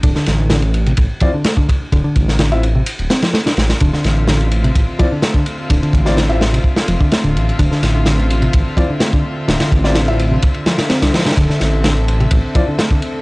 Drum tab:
RD |x---x---x-x-x-x-x---x---x---x---|x---x---x-x-x---x-x-x-x-x-x-x-x-|x---x---x-x-x-x-x---x---x---x---|x-x-x---x-x---x-----x---x-x-x-x-|
SD |--o-o---o---------------o-------|------o-o-----------o-o-o-o-o-o-|--o-o---o---------------o-------|------o-o---o-----o-----o-------|
BD |o---------------o---o-----o-o---|o---o---------------------------|o---------------o---o-----o-----|o---o-----------o-----o---------|

RD |x---x---x-x-x-x-x---x---x-------|x-x-x---x-x-x---x-x-x-x-x-x-xxxx|x---x---x-x-x-x-x---x---x---x---|
SD |--o-o---o---------------o-------|o-o---o-o-----------o-o-o-o-oooo|--o-o---o---------------o-------|
BD |o---------------o---o-----o-----|----o-----------o---------------|o---------------o---o-----o-----|